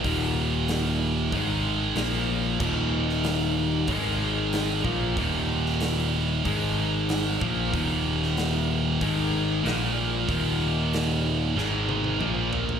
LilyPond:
<<
  \new Staff \with { instrumentName = "Distorted electric guitar" } { \clef bass \time 4/4 \key aes \lydian \tempo 4 = 94 <ees, bes, ees>2 <aes, ees aes>4 <bes, f bes>4 | <ees, bes, ees>2 <aes, ees aes>4. <bes, f bes>8 | <ees, bes, ees>2 <aes, ees aes>4. <bes, f bes>8 | <ees, bes, ees>2 <aes, ees aes>4 <bes, f bes>4 |
<ees, bes, ees>2 <aes, ees aes>4 <bes, f bes>4 | }
  \new Staff \with { instrumentName = "Overdriven electric guitar" } { \clef bass \time 4/4 \key aes \lydian <ees, bes, ees>2 <aes, ees aes>4 <bes, f bes>4 | <ees, bes, ees>2 <aes, ees aes>4. <bes, f bes>8 | <ees, bes, ees>2 <aes, ees aes>4. <bes, f bes>8 | <ees, bes, ees>2 <aes, ees aes>4 <bes, f bes>4 |
<ees, bes, ees>2 <aes, ees aes>4 <bes, f bes>4 | }
  \new Staff \with { instrumentName = "Overdriven electric guitar" } { \clef bass \time 4/4 \key aes \lydian <ees, bes, ees>2 <aes, ees aes>4 <bes, f bes>4 | <ees, bes, ees>2 <aes, ees aes>4. <bes, f bes>8 | <ees, bes, ees>2 <aes, ees aes>4. <bes, f bes>8 | <ees, bes, ees>2 <aes, ees aes>4 <bes, f bes>4 |
<ees, bes, ees>2 <aes, ees aes>4 <bes, f bes>4 | }
  \new Staff \with { instrumentName = "Picked electric bass" } { \clef bass \time 4/4 \key aes \lydian ees,,2 aes,,4 bes,,4 | ees,,2 aes,,4. bes,,8 | ees,,2 aes,,4. bes,,8 | ees,,2 aes,,4 bes,,4 |
ees,,2 aes,,4 bes,,4 | }
  \new DrumStaff \with { instrumentName = "Drums" } \drummode { \time 4/4 <hho bd>4 <hho sn>4 <hho bd>4 <hho sn>4 | <cymc bd>8. sn16 <hho sn>4 <hho bd>4 <hho sn>8 bd8 | <hho bd>8. sn16 <hho sn>4 <hho bd>4 <hho sn>8 bd8 | <hho bd>8. sn16 <hho sn>4 <hho bd>4 <hho sn>4 |
<hho bd>4 <hho sn>4 sn8 tommh16 tommh16 toml8 tomfh16 tomfh16 | }
>>